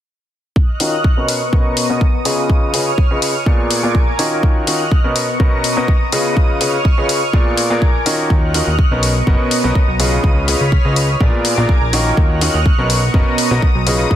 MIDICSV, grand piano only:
0, 0, Header, 1, 2, 480
1, 0, Start_track
1, 0, Tempo, 483871
1, 556, Time_signature, 4, 2, 24, 8
1, 14044, End_track
2, 0, Start_track
2, 0, Title_t, "Grand piano"
2, 0, Program_c, 0, 0
2, 796, Note_on_c, 0, 51, 69
2, 796, Note_on_c, 0, 61, 64
2, 796, Note_on_c, 0, 65, 61
2, 796, Note_on_c, 0, 66, 64
2, 796, Note_on_c, 0, 70, 61
2, 796, Note_on_c, 0, 75, 78
2, 934, Note_off_c, 0, 51, 0
2, 934, Note_off_c, 0, 61, 0
2, 934, Note_off_c, 0, 65, 0
2, 934, Note_off_c, 0, 66, 0
2, 934, Note_off_c, 0, 70, 0
2, 934, Note_off_c, 0, 75, 0
2, 1163, Note_on_c, 0, 47, 67
2, 1163, Note_on_c, 0, 61, 61
2, 1163, Note_on_c, 0, 66, 60
2, 1163, Note_on_c, 0, 70, 60
2, 1163, Note_on_c, 0, 71, 61
2, 1163, Note_on_c, 0, 75, 73
2, 1373, Note_off_c, 0, 47, 0
2, 1373, Note_off_c, 0, 61, 0
2, 1373, Note_off_c, 0, 66, 0
2, 1373, Note_off_c, 0, 70, 0
2, 1373, Note_off_c, 0, 71, 0
2, 1373, Note_off_c, 0, 75, 0
2, 1516, Note_on_c, 0, 47, 75
2, 1516, Note_on_c, 0, 61, 69
2, 1516, Note_on_c, 0, 66, 69
2, 1516, Note_on_c, 0, 70, 70
2, 1516, Note_on_c, 0, 71, 69
2, 1516, Note_on_c, 0, 75, 87
2, 1852, Note_off_c, 0, 47, 0
2, 1853, Note_off_c, 0, 61, 0
2, 1853, Note_off_c, 0, 66, 0
2, 1853, Note_off_c, 0, 70, 0
2, 1853, Note_off_c, 0, 71, 0
2, 1853, Note_off_c, 0, 75, 0
2, 1882, Note_on_c, 0, 61, 84
2, 1882, Note_on_c, 0, 66, 86
2, 1882, Note_on_c, 0, 70, 85
2, 1882, Note_on_c, 0, 71, 85
2, 1882, Note_on_c, 0, 75, 99
2, 1883, Note_on_c, 0, 47, 92
2, 2008, Note_off_c, 0, 61, 0
2, 2008, Note_off_c, 0, 66, 0
2, 2009, Note_off_c, 0, 47, 0
2, 2009, Note_off_c, 0, 70, 0
2, 2009, Note_off_c, 0, 71, 0
2, 2009, Note_off_c, 0, 75, 0
2, 2235, Note_on_c, 0, 61, 75
2, 2236, Note_on_c, 0, 49, 81
2, 2236, Note_on_c, 0, 65, 75
2, 2236, Note_on_c, 0, 68, 76
2, 2236, Note_on_c, 0, 71, 77
2, 2236, Note_on_c, 0, 75, 91
2, 2689, Note_off_c, 0, 49, 0
2, 2689, Note_off_c, 0, 61, 0
2, 2689, Note_off_c, 0, 65, 0
2, 2689, Note_off_c, 0, 68, 0
2, 2689, Note_off_c, 0, 71, 0
2, 2689, Note_off_c, 0, 75, 0
2, 2716, Note_on_c, 0, 49, 69
2, 2716, Note_on_c, 0, 61, 65
2, 2716, Note_on_c, 0, 65, 64
2, 2716, Note_on_c, 0, 68, 65
2, 2716, Note_on_c, 0, 71, 62
2, 2716, Note_on_c, 0, 75, 77
2, 2854, Note_off_c, 0, 49, 0
2, 2854, Note_off_c, 0, 61, 0
2, 2854, Note_off_c, 0, 65, 0
2, 2854, Note_off_c, 0, 68, 0
2, 2854, Note_off_c, 0, 71, 0
2, 2854, Note_off_c, 0, 75, 0
2, 3082, Note_on_c, 0, 49, 68
2, 3082, Note_on_c, 0, 61, 63
2, 3082, Note_on_c, 0, 65, 63
2, 3082, Note_on_c, 0, 68, 63
2, 3082, Note_on_c, 0, 71, 62
2, 3082, Note_on_c, 0, 75, 73
2, 3292, Note_off_c, 0, 49, 0
2, 3292, Note_off_c, 0, 61, 0
2, 3292, Note_off_c, 0, 65, 0
2, 3292, Note_off_c, 0, 68, 0
2, 3292, Note_off_c, 0, 71, 0
2, 3292, Note_off_c, 0, 75, 0
2, 3435, Note_on_c, 0, 59, 70
2, 3435, Note_on_c, 0, 65, 68
2, 3435, Note_on_c, 0, 74, 83
2, 3436, Note_on_c, 0, 46, 77
2, 3436, Note_on_c, 0, 68, 73
2, 3436, Note_on_c, 0, 70, 71
2, 3772, Note_off_c, 0, 46, 0
2, 3772, Note_off_c, 0, 59, 0
2, 3772, Note_off_c, 0, 65, 0
2, 3772, Note_off_c, 0, 68, 0
2, 3772, Note_off_c, 0, 70, 0
2, 3772, Note_off_c, 0, 74, 0
2, 3802, Note_on_c, 0, 46, 94
2, 3802, Note_on_c, 0, 59, 85
2, 3802, Note_on_c, 0, 65, 85
2, 3802, Note_on_c, 0, 68, 82
2, 3802, Note_on_c, 0, 70, 83
2, 3802, Note_on_c, 0, 74, 102
2, 3928, Note_off_c, 0, 46, 0
2, 3928, Note_off_c, 0, 59, 0
2, 3928, Note_off_c, 0, 65, 0
2, 3928, Note_off_c, 0, 68, 0
2, 3928, Note_off_c, 0, 70, 0
2, 3928, Note_off_c, 0, 74, 0
2, 4155, Note_on_c, 0, 51, 81
2, 4155, Note_on_c, 0, 61, 76
2, 4155, Note_on_c, 0, 65, 77
2, 4155, Note_on_c, 0, 66, 76
2, 4155, Note_on_c, 0, 70, 76
2, 4155, Note_on_c, 0, 75, 92
2, 4608, Note_off_c, 0, 75, 0
2, 4609, Note_off_c, 0, 51, 0
2, 4609, Note_off_c, 0, 61, 0
2, 4609, Note_off_c, 0, 65, 0
2, 4609, Note_off_c, 0, 66, 0
2, 4609, Note_off_c, 0, 70, 0
2, 4635, Note_on_c, 0, 61, 66
2, 4635, Note_on_c, 0, 65, 64
2, 4635, Note_on_c, 0, 66, 64
2, 4635, Note_on_c, 0, 70, 64
2, 4635, Note_on_c, 0, 75, 76
2, 4636, Note_on_c, 0, 51, 72
2, 4774, Note_off_c, 0, 51, 0
2, 4774, Note_off_c, 0, 61, 0
2, 4774, Note_off_c, 0, 65, 0
2, 4774, Note_off_c, 0, 66, 0
2, 4774, Note_off_c, 0, 70, 0
2, 4774, Note_off_c, 0, 75, 0
2, 5001, Note_on_c, 0, 61, 63
2, 5001, Note_on_c, 0, 71, 61
2, 5002, Note_on_c, 0, 47, 69
2, 5002, Note_on_c, 0, 66, 62
2, 5002, Note_on_c, 0, 70, 64
2, 5002, Note_on_c, 0, 75, 75
2, 5212, Note_off_c, 0, 47, 0
2, 5212, Note_off_c, 0, 61, 0
2, 5212, Note_off_c, 0, 66, 0
2, 5212, Note_off_c, 0, 70, 0
2, 5212, Note_off_c, 0, 71, 0
2, 5212, Note_off_c, 0, 75, 0
2, 5356, Note_on_c, 0, 47, 78
2, 5356, Note_on_c, 0, 61, 71
2, 5356, Note_on_c, 0, 66, 71
2, 5356, Note_on_c, 0, 70, 71
2, 5356, Note_on_c, 0, 71, 70
2, 5356, Note_on_c, 0, 75, 86
2, 5692, Note_off_c, 0, 47, 0
2, 5692, Note_off_c, 0, 61, 0
2, 5692, Note_off_c, 0, 66, 0
2, 5692, Note_off_c, 0, 70, 0
2, 5692, Note_off_c, 0, 71, 0
2, 5692, Note_off_c, 0, 75, 0
2, 5722, Note_on_c, 0, 47, 92
2, 5722, Note_on_c, 0, 61, 83
2, 5722, Note_on_c, 0, 66, 83
2, 5722, Note_on_c, 0, 70, 85
2, 5722, Note_on_c, 0, 71, 88
2, 5722, Note_on_c, 0, 75, 99
2, 5848, Note_off_c, 0, 47, 0
2, 5848, Note_off_c, 0, 61, 0
2, 5848, Note_off_c, 0, 66, 0
2, 5848, Note_off_c, 0, 70, 0
2, 5848, Note_off_c, 0, 71, 0
2, 5848, Note_off_c, 0, 75, 0
2, 6075, Note_on_c, 0, 65, 76
2, 6076, Note_on_c, 0, 49, 81
2, 6076, Note_on_c, 0, 61, 75
2, 6076, Note_on_c, 0, 68, 79
2, 6076, Note_on_c, 0, 71, 76
2, 6076, Note_on_c, 0, 75, 90
2, 6529, Note_off_c, 0, 49, 0
2, 6529, Note_off_c, 0, 61, 0
2, 6529, Note_off_c, 0, 65, 0
2, 6529, Note_off_c, 0, 68, 0
2, 6529, Note_off_c, 0, 71, 0
2, 6529, Note_off_c, 0, 75, 0
2, 6555, Note_on_c, 0, 49, 72
2, 6555, Note_on_c, 0, 61, 63
2, 6555, Note_on_c, 0, 65, 62
2, 6555, Note_on_c, 0, 68, 65
2, 6555, Note_on_c, 0, 71, 64
2, 6555, Note_on_c, 0, 75, 76
2, 6694, Note_off_c, 0, 49, 0
2, 6694, Note_off_c, 0, 61, 0
2, 6694, Note_off_c, 0, 65, 0
2, 6694, Note_off_c, 0, 68, 0
2, 6694, Note_off_c, 0, 71, 0
2, 6694, Note_off_c, 0, 75, 0
2, 6922, Note_on_c, 0, 65, 63
2, 6922, Note_on_c, 0, 68, 61
2, 6922, Note_on_c, 0, 75, 74
2, 6923, Note_on_c, 0, 49, 68
2, 6923, Note_on_c, 0, 61, 62
2, 6923, Note_on_c, 0, 71, 62
2, 7132, Note_off_c, 0, 49, 0
2, 7132, Note_off_c, 0, 61, 0
2, 7132, Note_off_c, 0, 65, 0
2, 7132, Note_off_c, 0, 68, 0
2, 7132, Note_off_c, 0, 71, 0
2, 7132, Note_off_c, 0, 75, 0
2, 7275, Note_on_c, 0, 46, 78
2, 7275, Note_on_c, 0, 65, 72
2, 7275, Note_on_c, 0, 68, 69
2, 7275, Note_on_c, 0, 70, 70
2, 7275, Note_on_c, 0, 74, 86
2, 7276, Note_on_c, 0, 59, 69
2, 7612, Note_off_c, 0, 46, 0
2, 7612, Note_off_c, 0, 59, 0
2, 7612, Note_off_c, 0, 65, 0
2, 7612, Note_off_c, 0, 68, 0
2, 7612, Note_off_c, 0, 70, 0
2, 7612, Note_off_c, 0, 74, 0
2, 7642, Note_on_c, 0, 46, 90
2, 7642, Note_on_c, 0, 59, 83
2, 7642, Note_on_c, 0, 65, 84
2, 7642, Note_on_c, 0, 68, 85
2, 7642, Note_on_c, 0, 70, 84
2, 7642, Note_on_c, 0, 74, 105
2, 7768, Note_off_c, 0, 46, 0
2, 7768, Note_off_c, 0, 59, 0
2, 7768, Note_off_c, 0, 65, 0
2, 7768, Note_off_c, 0, 68, 0
2, 7768, Note_off_c, 0, 70, 0
2, 7768, Note_off_c, 0, 74, 0
2, 7996, Note_on_c, 0, 51, 82
2, 7996, Note_on_c, 0, 61, 77
2, 7996, Note_on_c, 0, 65, 75
2, 7996, Note_on_c, 0, 66, 78
2, 7996, Note_on_c, 0, 70, 75
2, 7996, Note_on_c, 0, 75, 91
2, 8449, Note_off_c, 0, 51, 0
2, 8449, Note_off_c, 0, 61, 0
2, 8449, Note_off_c, 0, 65, 0
2, 8449, Note_off_c, 0, 66, 0
2, 8449, Note_off_c, 0, 70, 0
2, 8449, Note_off_c, 0, 75, 0
2, 8476, Note_on_c, 0, 51, 69
2, 8476, Note_on_c, 0, 61, 65
2, 8476, Note_on_c, 0, 65, 65
2, 8476, Note_on_c, 0, 66, 62
2, 8476, Note_on_c, 0, 70, 65
2, 8476, Note_on_c, 0, 75, 78
2, 8614, Note_off_c, 0, 51, 0
2, 8614, Note_off_c, 0, 61, 0
2, 8614, Note_off_c, 0, 65, 0
2, 8614, Note_off_c, 0, 66, 0
2, 8614, Note_off_c, 0, 70, 0
2, 8614, Note_off_c, 0, 75, 0
2, 8842, Note_on_c, 0, 47, 71
2, 8842, Note_on_c, 0, 61, 65
2, 8842, Note_on_c, 0, 66, 61
2, 8842, Note_on_c, 0, 70, 61
2, 8842, Note_on_c, 0, 71, 62
2, 8842, Note_on_c, 0, 75, 75
2, 9052, Note_off_c, 0, 47, 0
2, 9052, Note_off_c, 0, 61, 0
2, 9052, Note_off_c, 0, 66, 0
2, 9052, Note_off_c, 0, 70, 0
2, 9052, Note_off_c, 0, 71, 0
2, 9052, Note_off_c, 0, 75, 0
2, 9196, Note_on_c, 0, 47, 79
2, 9196, Note_on_c, 0, 61, 72
2, 9196, Note_on_c, 0, 66, 72
2, 9196, Note_on_c, 0, 70, 71
2, 9196, Note_on_c, 0, 71, 70
2, 9196, Note_on_c, 0, 75, 86
2, 9532, Note_off_c, 0, 47, 0
2, 9532, Note_off_c, 0, 61, 0
2, 9532, Note_off_c, 0, 66, 0
2, 9532, Note_off_c, 0, 71, 0
2, 9532, Note_off_c, 0, 75, 0
2, 9533, Note_off_c, 0, 70, 0
2, 9563, Note_on_c, 0, 47, 94
2, 9563, Note_on_c, 0, 61, 84
2, 9563, Note_on_c, 0, 66, 83
2, 9563, Note_on_c, 0, 70, 85
2, 9563, Note_on_c, 0, 71, 86
2, 9563, Note_on_c, 0, 75, 105
2, 9689, Note_off_c, 0, 47, 0
2, 9689, Note_off_c, 0, 61, 0
2, 9689, Note_off_c, 0, 66, 0
2, 9689, Note_off_c, 0, 70, 0
2, 9689, Note_off_c, 0, 71, 0
2, 9689, Note_off_c, 0, 75, 0
2, 9915, Note_on_c, 0, 49, 84
2, 9915, Note_on_c, 0, 71, 77
2, 9916, Note_on_c, 0, 61, 77
2, 9916, Note_on_c, 0, 65, 76
2, 9916, Note_on_c, 0, 68, 75
2, 9916, Note_on_c, 0, 75, 92
2, 10369, Note_off_c, 0, 49, 0
2, 10369, Note_off_c, 0, 61, 0
2, 10369, Note_off_c, 0, 65, 0
2, 10369, Note_off_c, 0, 68, 0
2, 10369, Note_off_c, 0, 71, 0
2, 10369, Note_off_c, 0, 75, 0
2, 10396, Note_on_c, 0, 49, 73
2, 10396, Note_on_c, 0, 61, 64
2, 10396, Note_on_c, 0, 65, 65
2, 10396, Note_on_c, 0, 68, 62
2, 10396, Note_on_c, 0, 71, 65
2, 10396, Note_on_c, 0, 75, 77
2, 10534, Note_off_c, 0, 49, 0
2, 10534, Note_off_c, 0, 61, 0
2, 10534, Note_off_c, 0, 65, 0
2, 10534, Note_off_c, 0, 68, 0
2, 10534, Note_off_c, 0, 71, 0
2, 10534, Note_off_c, 0, 75, 0
2, 10762, Note_on_c, 0, 49, 67
2, 10762, Note_on_c, 0, 61, 62
2, 10762, Note_on_c, 0, 65, 63
2, 10762, Note_on_c, 0, 68, 64
2, 10762, Note_on_c, 0, 71, 64
2, 10762, Note_on_c, 0, 75, 77
2, 10972, Note_off_c, 0, 49, 0
2, 10972, Note_off_c, 0, 61, 0
2, 10972, Note_off_c, 0, 65, 0
2, 10972, Note_off_c, 0, 68, 0
2, 10972, Note_off_c, 0, 71, 0
2, 10972, Note_off_c, 0, 75, 0
2, 11115, Note_on_c, 0, 46, 81
2, 11115, Note_on_c, 0, 59, 74
2, 11115, Note_on_c, 0, 65, 73
2, 11115, Note_on_c, 0, 68, 73
2, 11115, Note_on_c, 0, 70, 71
2, 11115, Note_on_c, 0, 74, 86
2, 11452, Note_off_c, 0, 46, 0
2, 11452, Note_off_c, 0, 59, 0
2, 11452, Note_off_c, 0, 65, 0
2, 11452, Note_off_c, 0, 68, 0
2, 11452, Note_off_c, 0, 70, 0
2, 11452, Note_off_c, 0, 74, 0
2, 11482, Note_on_c, 0, 46, 92
2, 11482, Note_on_c, 0, 59, 85
2, 11482, Note_on_c, 0, 65, 83
2, 11482, Note_on_c, 0, 68, 83
2, 11482, Note_on_c, 0, 70, 86
2, 11482, Note_on_c, 0, 74, 105
2, 11608, Note_off_c, 0, 46, 0
2, 11608, Note_off_c, 0, 59, 0
2, 11608, Note_off_c, 0, 65, 0
2, 11608, Note_off_c, 0, 68, 0
2, 11608, Note_off_c, 0, 70, 0
2, 11608, Note_off_c, 0, 74, 0
2, 11835, Note_on_c, 0, 51, 82
2, 11835, Note_on_c, 0, 61, 79
2, 11835, Note_on_c, 0, 65, 76
2, 11835, Note_on_c, 0, 66, 77
2, 11835, Note_on_c, 0, 70, 79
2, 11835, Note_on_c, 0, 75, 94
2, 12288, Note_off_c, 0, 51, 0
2, 12288, Note_off_c, 0, 65, 0
2, 12288, Note_off_c, 0, 66, 0
2, 12288, Note_off_c, 0, 70, 0
2, 12288, Note_off_c, 0, 75, 0
2, 12289, Note_off_c, 0, 61, 0
2, 12315, Note_on_c, 0, 51, 71
2, 12315, Note_on_c, 0, 61, 65
2, 12315, Note_on_c, 0, 65, 67
2, 12315, Note_on_c, 0, 66, 68
2, 12315, Note_on_c, 0, 70, 66
2, 12315, Note_on_c, 0, 75, 81
2, 12454, Note_off_c, 0, 51, 0
2, 12454, Note_off_c, 0, 61, 0
2, 12454, Note_off_c, 0, 65, 0
2, 12454, Note_off_c, 0, 66, 0
2, 12454, Note_off_c, 0, 70, 0
2, 12454, Note_off_c, 0, 75, 0
2, 12682, Note_on_c, 0, 47, 73
2, 12682, Note_on_c, 0, 61, 61
2, 12682, Note_on_c, 0, 66, 65
2, 12682, Note_on_c, 0, 70, 65
2, 12682, Note_on_c, 0, 71, 66
2, 12682, Note_on_c, 0, 75, 77
2, 12892, Note_off_c, 0, 47, 0
2, 12892, Note_off_c, 0, 61, 0
2, 12892, Note_off_c, 0, 66, 0
2, 12892, Note_off_c, 0, 70, 0
2, 12892, Note_off_c, 0, 71, 0
2, 12892, Note_off_c, 0, 75, 0
2, 13035, Note_on_c, 0, 47, 76
2, 13035, Note_on_c, 0, 66, 73
2, 13035, Note_on_c, 0, 70, 72
2, 13035, Note_on_c, 0, 75, 86
2, 13036, Note_on_c, 0, 61, 75
2, 13036, Note_on_c, 0, 71, 71
2, 13372, Note_off_c, 0, 47, 0
2, 13372, Note_off_c, 0, 61, 0
2, 13372, Note_off_c, 0, 66, 0
2, 13372, Note_off_c, 0, 70, 0
2, 13372, Note_off_c, 0, 71, 0
2, 13372, Note_off_c, 0, 75, 0
2, 13402, Note_on_c, 0, 47, 96
2, 13402, Note_on_c, 0, 61, 85
2, 13402, Note_on_c, 0, 66, 87
2, 13402, Note_on_c, 0, 70, 83
2, 13402, Note_on_c, 0, 71, 87
2, 13402, Note_on_c, 0, 75, 106
2, 13528, Note_off_c, 0, 47, 0
2, 13528, Note_off_c, 0, 61, 0
2, 13528, Note_off_c, 0, 66, 0
2, 13528, Note_off_c, 0, 70, 0
2, 13528, Note_off_c, 0, 71, 0
2, 13528, Note_off_c, 0, 75, 0
2, 13756, Note_on_c, 0, 49, 84
2, 13756, Note_on_c, 0, 61, 78
2, 13756, Note_on_c, 0, 65, 79
2, 13756, Note_on_c, 0, 68, 79
2, 13756, Note_on_c, 0, 71, 79
2, 13756, Note_on_c, 0, 75, 93
2, 14044, Note_off_c, 0, 49, 0
2, 14044, Note_off_c, 0, 61, 0
2, 14044, Note_off_c, 0, 65, 0
2, 14044, Note_off_c, 0, 68, 0
2, 14044, Note_off_c, 0, 71, 0
2, 14044, Note_off_c, 0, 75, 0
2, 14044, End_track
0, 0, End_of_file